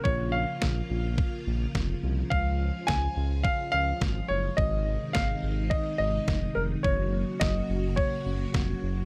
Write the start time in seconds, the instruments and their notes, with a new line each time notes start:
Already playing: string machine C#3
0.04 analog synth bass A#1, string machine F3 A#3 F4, grand piano C#5, kick
0.32 grand piano F5
0.62 analog synth bass A#1, kick, snare
0.90 analog synth bass A#1
1.18 kick
1.47 analog synth bass A#1
1.75 analog synth bass F1, kick, snare
2.03 analog synth bass C2
2.30 analog synth bass C#2, string machine G#3 F4, grand piano F5, kick
2.87 analog synth bass C#2, grand piano G#5, kick, snare
3.17 analog synth bass C#2
3.43 grand piano F5, kick
3.72 analog synth bass C#2, grand piano F5
4.01 analog synth bass G#1, kick, snare
4.28 analog synth bass F#1, grand piano C#5
4.57 analog synth bass G#1, string machine C3 D#3 D#4, grand piano D#5, kick
5.13 analog synth bass G#1, grand piano F5, kick, snare
5.43 analog synth bass G#1
5.70 grand piano D#5, kick
5.98 analog synth bass G#1, grand piano D#5
6.28 analog synth bass F1, kick, snare
6.55 analog synth bass F1, grand piano A#4
6.83 analog synth bass F#1, string machine C#3 F#3 A#3 F#4, grand piano C#5, kick
7.40 analog synth bass F#1, grand piano D#5, kick, snare
7.69 analog synth bass F#1
7.96 grand piano C#5, kick
8.26 analog synth bass F#1
8.54 analog synth bass F1, kick, snare
8.83 analog synth bass F#1